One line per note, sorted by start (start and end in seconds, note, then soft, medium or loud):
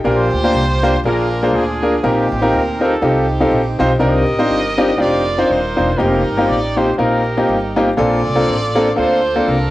0.04 0.29 A#1 loud
0.04 0.79 A#2 medium
0.04 0.27 A#3 medium
0.04 0.26 D4 medium
0.04 1.00 F4 medium
0.04 0.27 F4 medium
0.04 1.00 G4 medium
0.04 0.27 G4 medium
0.04 0.27 A#4 medium
0.04 1.00 C5 loud
0.33 0.51 D2 loud
0.44 0.62 A#3 medium
0.44 0.62 D4 medium
0.44 0.62 F4 medium
0.44 0.62 G4 medium
0.44 0.63 C5 medium
0.54 0.96 C2 loud
0.83 0.94 A#3 medium
0.83 0.94 D4 medium
0.83 0.94 F4 medium
0.83 0.94 G4 medium
0.83 0.94 C5 loud
1.04 1.54 A#1 loud
1.04 1.79 A#2 medium
1.04 1.27 A#3 medium
1.04 1.52 D4 medium
1.04 1.26 D4 medium
1.04 1.52 F4 medium
1.04 1.27 F4 medium
1.04 1.27 G#4 medium
1.04 1.27 A#4 medium
1.04 1.55 A#4 loud
1.42 1.61 A#3 medium
1.42 1.61 D4 medium
1.42 1.61 F4 medium
1.42 1.61 G#4 medium
1.42 1.61 C5 medium
1.54 1.96 D2 loud
1.54 2.00 D4 medium
1.54 2.00 F4 medium
1.54 2.03 G#4 loud
1.82 1.93 A#3 medium
1.82 1.93 D4 medium
1.82 1.93 F4 medium
1.82 1.93 G#4 medium
1.82 1.93 A#4 medium
2.03 2.28 A#1 loud
2.03 2.77 A#2 medium
2.03 2.25 C4 medium
2.03 2.99 C4 medium
2.03 2.98 D#4 medium
2.03 2.25 D#4 medium
2.03 2.25 F4 medium
2.03 2.25 G4 medium
2.03 2.53 G4 loud
2.03 2.25 A#4 medium
2.32 2.50 A1 medium
2.42 2.60 C4 medium
2.42 2.60 D#4 medium
2.42 2.60 F4 medium
2.42 2.60 G4 medium
2.42 2.60 A#4 medium
2.53 2.95 D2 loud
2.53 2.82 A#4 loud
2.81 2.92 C4 medium
2.81 2.92 D#4 medium
2.81 2.92 F4 medium
2.81 2.92 G4 medium
2.81 3.02 A4 medium
2.81 2.92 A#4 medium
3.02 3.44 C2 loud
3.02 3.24 C4 medium
3.02 3.98 C4 medium
3.02 3.24 D#4 medium
3.02 3.97 D#4 medium
3.02 3.24 F4 medium
3.02 3.24 G4 medium
3.02 3.81 G4 medium
3.02 3.24 A4 medium
3.40 3.59 C4 medium
3.40 3.59 D#4 medium
3.40 3.59 F4 medium
3.40 3.59 G4 medium
3.40 3.60 A4 medium
3.51 3.76 A#1 loud
3.79 3.98 B1 loud
3.79 3.90 C4 medium
3.79 3.91 D#4 medium
3.79 3.91 F4 medium
3.79 3.91 G4 medium
3.79 3.91 C5 loud
3.99 4.25 C2 loud
3.99 4.74 C3 medium
3.99 4.22 C4 medium
3.99 4.22 D4 medium
3.99 4.22 D#4 medium
3.99 4.23 F4 medium
3.99 4.97 G4 medium
3.99 4.23 A#4 medium
3.99 4.97 A#4 medium
3.99 4.96 D#5 loud
4.39 4.58 C4 medium
4.39 4.58 D4 medium
4.39 4.58 D#4 medium
4.39 4.58 F4 medium
4.39 4.58 C5 loud
4.50 4.92 G1 medium
4.78 4.90 C4 loud
4.78 4.89 D4 medium
4.78 4.90 D#4 medium
4.78 4.90 F4 medium
4.78 4.90 G4 loud
4.98 5.42 F1 medium
4.98 5.21 C4 medium
4.98 5.21 D4 medium
4.98 5.21 D#4 medium
4.98 5.21 F4 medium
4.98 5.51 F4 medium
4.98 5.21 G4 medium
4.98 5.96 A#4 medium
4.98 5.50 D5 loud
5.38 5.57 C4 medium
5.38 5.57 D4 medium
5.38 5.57 D#4 medium
5.38 5.57 F4 medium
5.38 5.57 C5 medium
5.50 5.74 D#1 medium
5.50 5.97 D#4 medium
5.50 5.97 F4 medium
5.50 6.00 C5 loud
5.76 5.96 E1 medium
5.76 5.88 C4 medium
5.76 5.89 D4 medium
5.76 5.89 D#4 medium
5.76 5.89 F4 medium
5.76 5.89 C5 medium
5.97 6.24 F1 loud
5.97 6.21 A#3 medium
5.97 6.21 C4 medium
5.97 6.21 D#4 medium
5.97 6.95 D#4 medium
5.97 6.21 F4 medium
5.97 6.21 G4 medium
5.97 6.95 G4 medium
5.97 6.48 A#4 loud
6.29 6.46 G1 medium
6.37 6.56 A#3 medium
6.37 6.57 C4 medium
6.37 6.57 D#4 medium
6.37 6.57 F4 medium
6.37 6.57 G4 medium
6.48 6.92 A1 loud
6.48 6.77 D5 loud
6.76 6.88 A#3 medium
6.76 6.88 C4 medium
6.76 6.88 D#4 medium
6.76 6.88 F4 medium
6.76 6.89 G4 medium
6.76 6.98 C5 medium
6.97 7.41 A#1 medium
6.97 7.21 A#3 medium
6.97 7.21 C4 medium
6.97 7.80 D#4 medium
6.97 7.21 D#4 medium
6.97 7.21 F4 medium
6.97 7.80 G4 medium
6.97 7.72 A#4 medium
6.97 7.21 A#4 medium
7.37 7.56 A#3 medium
7.37 7.56 C4 medium
7.37 7.56 D#4 medium
7.37 7.56 F4 medium
7.37 7.56 G4 medium
7.49 7.91 G1 medium
7.76 7.88 A#3 medium
7.76 7.88 C4 medium
7.76 7.88 D#4 medium
7.76 7.88 F4 medium
7.76 7.88 G4 medium
7.97 8.23 A#1 loud
7.97 8.72 A#2 medium
7.97 8.20 A#3 medium
7.97 8.20 C4 medium
7.97 8.20 D4 medium
7.97 8.20 F4 medium
7.97 8.93 F4 medium
7.97 8.20 A4 medium
7.97 8.93 A4 medium
7.97 8.93 D5 loud
8.27 8.45 C2 medium
8.35 8.55 A#3 medium
8.35 8.55 C4 medium
8.35 8.55 D4 medium
8.35 8.55 F4 medium
8.35 8.55 A4 medium
8.48 8.90 A1 medium
8.75 8.87 A#3 medium
8.75 8.87 C4 medium
8.75 8.87 D4 medium
8.75 8.87 F4 medium
8.75 8.87 A4 loud
8.96 9.40 D2 medium
8.96 9.19 A#3 medium
8.96 9.19 C4 medium
8.96 9.19 D4 medium
8.96 9.19 F4 medium
8.96 9.47 F4 medium
8.96 9.19 A4 medium
8.96 9.70 A4 medium
8.96 9.47 C5 loud
9.35 9.54 A#3 medium
9.35 9.55 C4 medium
9.35 9.55 D4 medium
9.35 9.55 F4 medium
9.35 9.55 A4 medium
9.48 9.70 C2 loud
9.48 9.70 D4 medium
9.48 9.70 F4 medium
9.48 9.70 A#4 loud